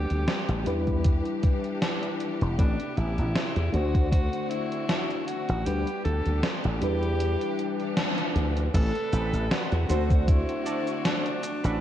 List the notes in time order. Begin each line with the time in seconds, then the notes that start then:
Already playing: G3 B3 G4
0.10 D2, closed hi-hat
0.28 snare, closed hi-hat
0.49 A1, closed hi-hat
0.64 E2 G3 D4 E4 B4, closed hi-hat
0.87 kick, closed hi-hat
1.04 E3 D4, kick, closed hi-hat
1.25 closed hi-hat
1.43 kick, closed hi-hat
1.64 closed hi-hat
1.82 snare, closed hi-hat
2.03 closed hi-hat
2.20 closed hi-hat
2.41 E1, closed hi-hat
2.58 A1 C3 A3 B3 C4 D4 G4 B4, kick, closed hi-hat
2.80 closed hi-hat
2.97 A1 E4, closed hi-hat
3.18 A1, closed hi-hat
3.35 snare, closed hi-hat
3.56 E2, closed hi-hat
3.72 D2 D3 A3 C4 D4 F#4 C5, closed hi-hat
3.95 kick, closed hi-hat
4.11 F#4, kick, closed hi-hat
4.33 closed hi-hat
4.50 E4, closed hi-hat
4.72 closed hi-hat
4.89 snare, closed hi-hat
5.10 closed hi-hat
5.27 F#4, closed hi-hat
5.49 A1, closed hi-hat
5.65 D2 G3 B3 D4 F#4 G4 B4, closed hi-hat
5.87 closed hi-hat
6.04 D2 A4, closed hi-hat
6.26 D2, closed hi-hat
6.43 snare, closed hi-hat
6.64 A1, closed hi-hat
6.81 E2 G3 D4 E4 G4 B4, closed hi-hat
7.03 closed hi-hat
7.20 E3 D4, closed hi-hat
7.41 closed hi-hat
7.59 closed hi-hat
7.80 closed hi-hat
7.97 snare, closed hi-hat
8.18 closed hi-hat
8.36 D2, closed hi-hat
8.57 closed hi-hat
8.74 A1 C3 G3 A3 C4 G4 A4 B4, kick, closed hi-hat, crash, cabasa
8.95 closed hi-hat
9.13 A1 C4 G4 A4 B4, closed hi-hat, cabasa
9.33 A1, closed hi-hat, cabasa
9.51 F#4, snare, closed hi-hat, cabasa
9.72 E2, closed hi-hat
9.88 D2 D3 A3 C4 D4 F#4 A4 C5, closed hi-hat, cabasa
10.10 kick, closed hi-hat, cabasa
10.28 E4, kick, closed hi-hat, cabasa
10.49 closed hi-hat
10.66 D4 F#4 A4 D5, closed hi-hat, cabasa
10.87 closed hi-hat, cabasa
11.05 D4, snare, closed hi-hat, cabasa
11.26 closed hi-hat
11.43 muted clean electric guitar stroke, closed hi-hat, cabasa
11.64 A1 D4 F#4 A4 B4, closed hi-hat, cabasa